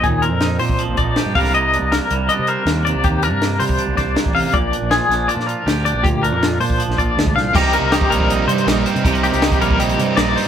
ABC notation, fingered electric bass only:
X:1
M:4/4
L:1/16
Q:1/4=160
K:Cm
V:1 name="Fingered electric bass" clef=bass
E,,3 F,,3 B,,2 z B,,, B,,,2 z G,, C,,2- | C,,3 C,,2 z C,,2 z C,2 z E,,3 C,, | E,,3 G,,3 C,2 z C,, C,,2 z =A,,,2 z | B,,,2 z B,,,2 z B,,,2 z B,,2 z D,,3 B,,, |
D,,3 F,,3 B,,2 z B,,, B,,,2 D,,2 C,,2 | C,,3 C,,2 z B,,,4 C,2 B,,,2 z C, | C,,3 C,,2 z B,,,4 C,2 B,,,2 z2 |]